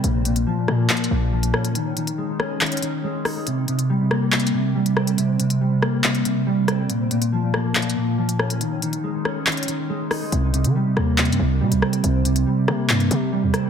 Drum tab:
HH |x-----------x-----x-----------------------------x---x---x---------------------x-----------x-----|x-----------x-----x-----------------------------x--x--x--x--x-----------------------o-----------|x-----------x-----x-----------------------------x---x---x---------------------x-----------x-----|x-----------x-----x-----------------------------x-----x-----x-----------------------x-----------|
CP |------------------------------------------------x-----------------------------------------------|------------------------------------------------x-----------------------------------------------|------------------------------------------------x-----------------------------------------------|------------------------------------------------x-----------------------------------------------|
SD |------------------------------------r-----------------------------------------------r-----------|------------------------------------r-----------------------------------------------r-----------|------------------------------------r-----------------------------------------------r-----------|------------------------------------r-----------------------------------------------r-----------|

HH |x-----------x-----x-----------------------------x---x---x---------------------x-----------x-----|x-----------x-----x-----------------------------x--x--x--x--x-----------------------o-----------|x-----------x-----x-----------------------------x---x---x---------------------x-----------x-----|x-----------x-----x-----------------------------x-----x-----x-----------------------x-----------|
CP |------------------------------------------------x-----------------------------------------------|------------------------------------------------x-----------------------------------------------|------------------------------------------------x-----------------------------------------------|------------------------------------------------x-----------------------------------------------|
SD |------------------------------------r-----------------------------------------------r-----------|------------------------------------r-----------------------------------------------r-----------|------------------------------------r-----------------------------------------------r-----------|------------------------------------r-----------------------------------------------r-----------|